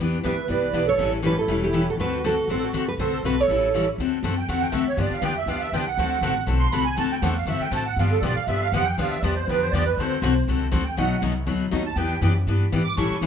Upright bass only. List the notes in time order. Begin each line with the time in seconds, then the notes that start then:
Already playing: E2
0.24 D2
0.49 C2
0.73 B1
0.98 A1
1.48 E1
1.97 D2
2.48 A1
2.73 D2
2.97 C2
3.23 B1
3.48 A1
3.98 D2
4.23 F#2
4.48 E2
4.72 D2
4.97 G2
5.11 muted upright bass stroke
5.22 E2
5.46 D2
5.72 C2
5.97 D2
6.21 A1
6.47 B1
6.73 C2
6.98 D2
7.22 E2
7.46 F#2
7.60 muted upright bass stroke
7.71 A2
7.97 G2
8.22 B2
8.36 muted upright bass stroke
8.47 G2
8.72 F2
8.98 D2
9.23 E2
9.48 F2
9.73 E2
9.97 D2
10.22 B1
10.48 C2
10.73 D2
10.97 B1
11.22 C2
11.47 D2
11.72 D#2
11.96 E2
12.21 F#2
12.47 G2
12.72 G#2
12.97 A2
13.10 muted upright bass stroke
13.21 G2